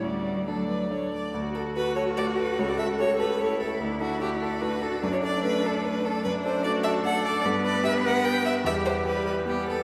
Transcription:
X:1
M:3/4
L:1/16
Q:1/4=148
K:D
V:1 name="Violin"
F4 A2 B2 c2 d2 | z2 A2 B2 c2 d2 B2 | c d e2 c2 B2 c2 A2 | z2 F2 G2 A2 B2 A2 |
B c d2 B2 A2 B2 A2 | [K:G] B2 c2 d2 e2 f2 d2 | z2 d2 e2 f2 g2 e2 | e2 c2 B2 B2 G2 A2 |]
V:2 name="Grand piano"
D,,4 [A,Dd]4 [A,Dd]4 | D,,2 A2 F2 A2 A,2 A2 | C,,2 A2 G2 A2 A,2 A2 | D,,2 A2 F2 A2 A,2 A2 |
F,,2 A2 A,2 A2 A,2 A2 | [K:G] F,,2 A2 A,2 A2 A,2 A2 | G,,2 B2 G2 B2 B,2 B2 | E,,2 B2 G2 B2 B,2 B2 |]
V:3 name="Cello"
G,4 F,6 z2 | F12- | F8 E4- | E8 F4 |
D12 | [K:G] D4 F4 A4 | B12 | G8 B,4 |]
V:4 name="Viola"
d4 d6 z2 | F12 | A12 | D12- |
D12 | [K:G] D12 | B,12 | G,4 G,4 G,4 |]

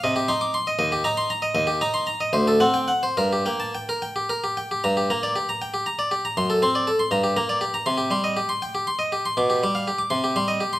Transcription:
X:1
M:6/8
L:1/16
Q:3/8=79
K:Eb
V:1 name="Harpsichord"
e G c' d' c' e e G b c' b e | [K:Gm] e G b c' b e c A ^f g f c | B G g a g B g G B G g G | b G b d G b g G b d G b |
c' A c' d A c' b G b d G b | c' G c' e G c' g G c' e G c' | d' G d' f G d' c' G c' e G c' |]
V:2 name="Harpsichord" clef=bass
C,2 E2 z2 E,,2 E2 z2 | [K:Gm] E,,2 E2 z2 D,,2 C2 z2 | G,,2 B,2 z8 | G,,2 B,2 z8 |
^F,,2 C2 z2 G,,2 B,2 z2 | C,2 G,2 z8 | =B,,2 G,2 z2 C,2 G,2 z2 |]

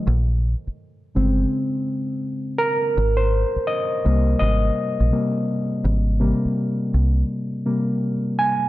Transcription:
X:1
M:4/4
L:1/16
Q:"Swing 16ths" 1/4=83
K:Ab
V:1 name="Reed electric piano"
z12 z2 B2- | B c3 e4 e6 z2 | z12 z2 a2 |]
V:2 name="Reed electric piano" clef=bass
z6 [D,A,C]8- [D,A,C]2 | z6 [C,G,B,]2 z4 [C,G,B,]2 z2 | z2 [C,G,B,]6 z2 [C,G,B,]2 z4 |]
V:3 name="Fingered electric bass" clef=bass
B,,,3 z3 G,,,2 z8 | A,,,3 z3 C,,2 A,,,2 z B,,, z4 | A,,,3 z3 C,,2 z8 |]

